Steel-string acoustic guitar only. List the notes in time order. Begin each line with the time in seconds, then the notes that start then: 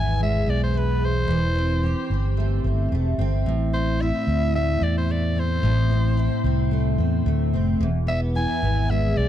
Already playing: E2 B3 E4
0.20 G#3
0.46 B3
0.74 G#3
1.28 E3
1.55 C4
1.83 G4
2.11 C4
2.37 A3
2.64 C4
2.92 A3
3.19 C4
3.46 A2
3.73 C4
4.00 E4
4.27 C4
4.54 A3
4.81 C4
5.09 A3
5.36 C4
5.63 A2
5.90 C4
6.17 E4
6.44 C4
6.71 A3
6.98 C4
7.26 A3
7.54 C4
7.81 E2
8.07 B3
8.35 E4
8.62 B3
8.89 G#3
9.16 B3